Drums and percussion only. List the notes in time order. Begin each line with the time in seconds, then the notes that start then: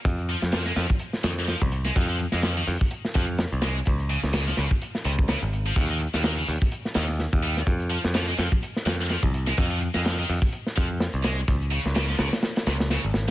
0.05 kick, closed hi-hat
0.19 closed hi-hat
0.29 closed hi-hat
0.42 snare, closed hi-hat
0.52 snare, closed hi-hat
0.66 snare
0.76 snare, closed hi-hat
0.90 kick, closed hi-hat
0.99 closed hi-hat
1.13 snare
1.24 snare, closed hi-hat
1.38 snare, closed hi-hat
1.48 snare, closed hi-hat
1.62 kick
1.72 closed hi-hat
1.85 snare, closed hi-hat
1.96 kick, closed hi-hat
2.19 closed hi-hat
2.32 snare, closed hi-hat
2.43 snare, closed hi-hat
2.67 closed hi-hat, open hi-hat
2.81 kick, closed hi-hat
2.91 closed hi-hat
3.05 snare
3.15 kick, closed hi-hat
3.29 closed hi-hat
3.38 snare, closed hi-hat
3.62 snare, closed hi-hat
3.76 closed hi-hat
3.85 kick, closed hi-hat
4.00 closed hi-hat
4.10 closed hi-hat
4.24 snare, closed hi-hat
4.34 snare, closed hi-hat
4.48 snare
4.57 snare, closed hi-hat
4.71 kick, closed hi-hat
4.82 closed hi-hat
4.95 snare
5.06 closed hi-hat
5.19 kick, closed hi-hat
5.29 snare, closed hi-hat
5.53 closed hi-hat
5.66 closed hi-hat
5.76 kick, closed hi-hat
6.00 closed hi-hat
6.14 snare, closed hi-hat
6.24 snare, closed hi-hat
6.48 closed hi-hat, open hi-hat
6.62 kick, closed hi-hat
6.72 closed hi-hat
6.85 snare
6.95 snare, closed hi-hat
7.09 snare, closed hi-hat
7.19 snare, closed hi-hat
7.33 kick
7.43 closed hi-hat
7.57 snare, closed hi-hat
7.67 kick, closed hi-hat
7.80 closed hi-hat
7.91 closed hi-hat
8.04 snare, closed hi-hat
8.15 snare, closed hi-hat
8.28 snare
8.38 snare, closed hi-hat
8.52 kick, closed hi-hat
8.62 closed hi-hat
8.76 snare
8.86 snare, closed hi-hat
9.00 snare, closed hi-hat
9.10 snare, closed hi-hat
9.23 kick
9.34 closed hi-hat
9.47 snare, closed hi-hat
9.57 kick, closed hi-hat
9.81 closed hi-hat
9.94 snare, closed hi-hat
10.05 snare, closed hi-hat
10.29 closed hi-hat, open hi-hat
10.42 kick, closed hi-hat
10.53 closed hi-hat
10.67 snare
10.77 kick, closed hi-hat
10.91 closed hi-hat
11.00 snare, closed hi-hat
11.24 snare, closed hi-hat
11.38 closed hi-hat
11.48 kick, closed hi-hat
11.62 closed hi-hat
11.71 closed hi-hat
11.86 snare, closed hi-hat
11.96 snare, closed hi-hat
12.10 snare
12.19 snare, closed hi-hat
12.33 snare, closed hi-hat
12.43 snare, closed hi-hat
12.56 snare, closed hi-hat
12.67 snare, closed hi-hat
12.80 snare, closed hi-hat
12.90 snare, closed hi-hat
13.14 snare, closed hi-hat